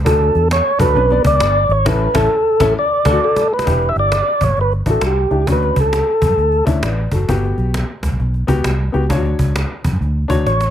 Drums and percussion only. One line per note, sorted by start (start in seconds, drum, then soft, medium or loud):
0.06 cajon bass loud
0.21 cajon slap soft
0.35 cajon slap soft
0.51 cajon slap loud
0.79 cajon bass medium
0.96 cajon slap soft
1.10 cajon slap soft
1.25 cajon bass medium
1.40 cajon slap loud
1.70 cajon slap soft
1.86 cajon bass loud
1.86 cajon slap loud
2.15 cajon bass loud
2.15 cajon slap loud
2.60 cajon bass loud
2.60 cajon slap loud
3.05 cajon bass medium
3.05 cajon slap loud
3.36 cajon slap medium
3.59 cajon slap medium
3.67 cajon bass loud
3.82 cajon slap soft
3.96 cajon slap soft
4.12 cajon slap medium
4.41 cajon bass medium
4.57 cajon slap soft
4.72 cajon slap soft
4.86 cajon bass medium
5.01 cajon slap loud
5.31 cajon slap soft
5.47 cajon bass loud
5.62 cajon slap soft
5.76 cajon bass medium
5.93 cajon slap medium
6.22 cajon bass medium
6.38 cajon slap soft
6.52 cajon slap soft
6.67 cajon bass medium
6.83 cajon slap loud
7.12 cajon bass medium
7.29 cajon bass loud
7.44 cajon slap soft
7.58 cajon slap soft
7.74 cajon slap loud
8.03 cajon bass medium
8.20 cajon slap soft
8.34 cajon slap soft
8.48 cajon bass medium
8.64 cajon slap loud
8.94 cajon slap soft
9.10 cajon bass loud
9.25 cajon slap soft
9.39 cajon bass medium
9.56 cajon slap loud
9.84 cajon bass medium
10.02 cajon slap soft
10.30 cajon bass medium
10.47 cajon slap medium
10.61 cajon slap medium